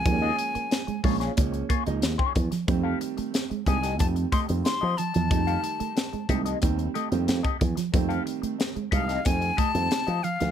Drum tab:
HH |x-xxxxoxxxxxx-xx|x-xxxxxxxxxxx-xx|xxxxxxxxxxxxxxxx|xxxxxxxxxxxxxxxx|
SD |----o--o----o--o|----o--o----o---|----o-------o--o|----o--o----o--o|
BD |o-----o-o-o--oo-|o-----o-o-o-----|o-----o-o----oo-|o-----o-o-o-----|